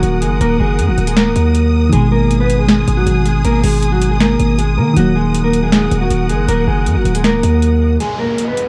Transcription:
Already playing: D#3 F#3 A#3 F#4 A#4 F#5 D#6
0.03 D#1, closed hi-hat
0.22 F#1 G#3 G#4, closed hi-hat
0.41 D#1 A#3 A#4, closed hi-hat
0.60 F#1 G#3 G#4
0.79 F#2, closed hi-hat
0.88 F#1 F#3 F#4
0.98 D#1, closed hi-hat
1.07 G#3 G#4, closed hi-hat
1.17 A#3 A#4, snare, closed hi-hat
1.26 C#1
1.36 D#2, closed hi-hat
1.55 closed hi-hat
1.89 G#1 D#3 G#3 G#4 G#5, closed hi-hat
1.94 B2 G#3
2.12 A#3 A#4
2.31 closed hi-hat
2.40 B3 B4
2.50 closed hi-hat
2.59 G#3 G#4
2.69 G#3 G#4, snare, closed hi-hat
2.88 G#1, closed hi-hat
2.97 F#3 F#4
3.07 G#1, closed hi-hat
3.26 G#3 G#4, closed hi-hat
3.45 G#1 A#3 A#4, closed hi-hat
3.64 G#1 G#3 G#4, open hi-hat
3.83 closed hi-hat
3.92 F#3 F#4
4.02 closed hi-hat
4.11 G#3 G#4
4.20 A#3 A#4, snare, closed hi-hat
4.40 G#1, closed hi-hat
4.59 G#3 G#4, closed hi-hat
4.78 D#3 A#3 A#4
4.93 D#1 D#3 F#3 F#4 A#4 F#5, closed hi-hat
4.97 F#3 A#3
5.16 G#3 G#4
5.35 closed hi-hat
5.44 A#3 A#4
5.53 closed hi-hat
5.63 G#3 G#4
5.72 G#3 G#4, snare, closed hi-hat
5.91 D#1, closed hi-hat
6.01 F#3 F#4
6.10 D#1, closed hi-hat
6.29 F#1 G#3 G#4, closed hi-hat
6.48 D#1 A#3 A#4, closed hi-hat
6.67 F#1 G#3 G#4
6.86 F#2, closed hi-hat
6.96 F#1 F#3 F#4
7.05 D#1, closed hi-hat
7.15 G#3 G#4, closed hi-hat
7.24 A#3 A#4, snare, closed hi-hat
7.34 C#1
7.43 D#2, closed hi-hat
7.62 closed hi-hat
8.00 B2 G#3 G#4 D#5, closed hi-hat, downlifter
8.19 A#3 A#4
8.38 closed hi-hat
8.48 B3 B4
8.57 closed hi-hat

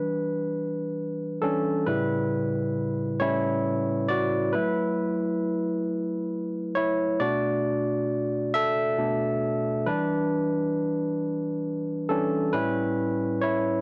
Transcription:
Already playing: E3 G3 D4 B4
1.42 E3 G3 C#4 D4 A4
1.86 A2 C#3 G3 E4 B4
3.20 A2 G3 C#4 E4 C#5
4.08 F#4 D5
4.53 F#3 A3 E4 B4
6.75 E4 C#5
7.20 B2 A3 D4 F#4 D5
8.54 A4 E5
8.98 B2 A3 D4
9.86 E3 G3 D4 B4
12.09 E3 G3 C#4 D4 A4
12.53 A2 G3 C#4 E4 B4
13.41 E4 C#5

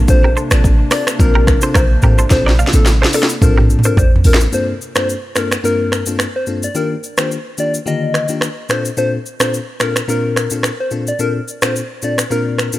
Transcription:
Already playing: A#1 C3 A#3 D4
0.08 C4 D4 F4 A4 C5, kick, shaker
0.24 G4 A#4
0.37 A4 C5, shaker
0.51 A1 C4 D4 F4 A4 D5, finger snap, cross-stick, shaker
0.64 kick, shaker
0.91 C4 D4 F4 A4 A#4 D5, finger snap, cross-stick, open hi-hat, shaker
1.07 finger snap, cross-stick, shaker
1.19 A#1 C4 D4 F4 A#4, kick, shaker
1.35 G4 A#4
1.47 finger snap, kick, cross-stick, shaker
1.61 C4 D4 F4 A4 C5, shaker
1.74 A#1 F4 A#4 C5, finger snap, kick, cross-stick, shaker
2.02 A1 C4 D4 F4 G4 A4 A#4, mid tom, shaker
2.18 A4 C5, shaker
2.30 A#1 C4 D4 F4 A4 C5, kick, snare, shaker
2.46 A#4 D5, snare
2.59 D5 F5, shaker
2.67 snare
2.73 A1 C4 D4 F4 A4, shaker
2.86 snare, shaker
3.02 A4 C5, snare
3.13 C4 D4 F4 A4 A#4 D5, open hi-hat, shaker
3.23 snare
3.29 shaker
3.41 A#1 C4 D4 F4 A4 A#4, kick, mid tom, shaker
3.58 G4 A#4, mid tom
3.70 shaker
3.79 mid tom
3.84 C4 D4 F4 A4 A#4 C5, shaker
3.97 A1 A#4 C5 D5, kick, floor tom, shaker
4.16 floor tom
4.24 A1 C4 D4 F4 A4 A#4, open hi-hat, shaker
4.34 snare
4.41 shaker
4.52 G2 A#3 C4 D4 F4 A4 C5, shaker
4.81 shaker
4.95 G2 A#3 C4 D4 F4 A4 C5, finger snap, cross-stick, shaker
5.09 shaker
5.36 G2 A#3 C4 D4 F4 A4 A#4, finger snap, cross-stick, shaker
5.51 finger snap, cross-stick, shaker
5.63 G2 A#3 C4 D4 F4 A#4, shaker
5.92 finger snap, cross-stick, shaker
6.06 G2 A#3 C4 D4 F4 A4, shaker
6.19 finger snap, cross-stick, shaker
6.36 C5
6.47 G2 A#3 C4 D4 F4 A4, shaker
6.63 D5, shaker
6.75 D#3 A#3 D4 F4 G4 A#4, shaker
7.04 shaker
7.17 D#3 A#3 D4 F4 G4 C5, finger snap, cross-stick, shaker
7.32 shaker
7.58 D#3 A#3 D4 F4 G4 D5, shaker
7.74 shaker
7.86 D3 D#3 A#3 F4 G4 D#5, shaker
8.14 finger snap, cross-stick, shaker
8.28 D#3 A#3 D4 F4 G4, shaker
8.41 finger snap, cross-stick, shaker
8.69 A#2 C4 D4 F4 A4 C5, finger snap, cross-stick, shaker
8.85 shaker
8.97 A#2 C4 D4 F4 A4 C5, shaker
9.26 shaker
9.40 A#2 C4 D4 F4 A4 C5, finger snap, cross-stick, shaker
9.54 shaker
9.80 A#2 C4 D4 F4 A4 A#4, finger snap, cross-stick, shaker
9.96 finger snap, cross-stick, shaker
10.08 A#2 C4 D4 F4 A#4, shaker
10.36 finger snap, cross-stick, shaker
10.50 A#2 C4 D4 F4 A4, shaker
10.63 finger snap, cross-stick, shaker
10.80 C5
10.91 A#2 C4 D4 F4 A4, shaker
11.07 D5, shaker
11.19 A#2 C4 D4 F4 A4 A#4, shaker
11.48 shaker
11.62 A#2 C4 D4 F4 A4 C5, finger snap, cross-stick, shaker
11.76 shaker
12.02 A#2 C4 D4 F4 A4 D5, shaker
12.18 finger snap, cross-stick, shaker
12.30 A#2 C4 D4 F4 A#4, shaker
12.58 finger snap, cross-stick, shaker
12.73 A#2 C4 D4 F4 A4, shaker

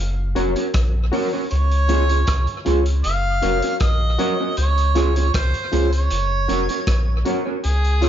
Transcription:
0.00 F#1
0.35 F1 C#4 F#4 A#4 C#5, closed hi-hat
0.56 C#4 F#4 A#4 C#5, closed hi-hat
0.74 A#1, kick, cross-stick, closed hi-hat
1.12 C#4 F#4 A#4 C#5, open hi-hat
1.33 C#4 F#4 A#4 C#5
1.51 C#2 C#5, closed hi-hat
1.71 closed hi-hat
1.88 C#4 F4 G#4 C#5, closed hi-hat
2.09 C#4 F4 G#4 C#5, closed hi-hat
2.27 C2, kick, cross-stick, closed hi-hat
2.47 closed hi-hat
2.65 C#2 C#4 F4 G#4 C#5, closed hi-hat
2.86 closed hi-hat
3.04 F#1 F5, closed hi-hat
3.42 F1 C#4 F#4 A#4 C#5, closed hi-hat
3.62 C#4 F#4 A#4 C#5, closed hi-hat
3.80 A#1 D#5, kick, cross-stick, closed hi-hat
4.18 C#4 F#4 A#4 C#5, closed hi-hat
4.39 C#4 F#4 A#4 C#5
4.57 C#2 C#5, closed hi-hat
4.78 closed hi-hat
4.95 C#4 F4 G#4 C#5, cross-stick, closed hi-hat
5.16 C#4 F4 G#4 C#5, closed hi-hat
5.34 C2 C5, kick, cross-stick, closed hi-hat
5.54 closed hi-hat
5.72 C#2 C#4 F4 G#4 C#5, closed hi-hat
5.93 C#5, closed hi-hat
6.11 F#1, closed hi-hat
6.48 F1 C#4 F#4 A#4 C#5, closed hi-hat
6.69 C#4 F#4 A#4 C#5, closed hi-hat
6.87 A#1, kick, cross-stick, closed hi-hat
7.25 C#4 F#4 A#4 C#5, closed hi-hat
7.46 C#4 F#4 A#4 C#5
7.64 C#2 G#4, closed hi-hat
7.84 closed hi-hat
8.01 C#4 F4 G#4 C#5, cross-stick, closed hi-hat

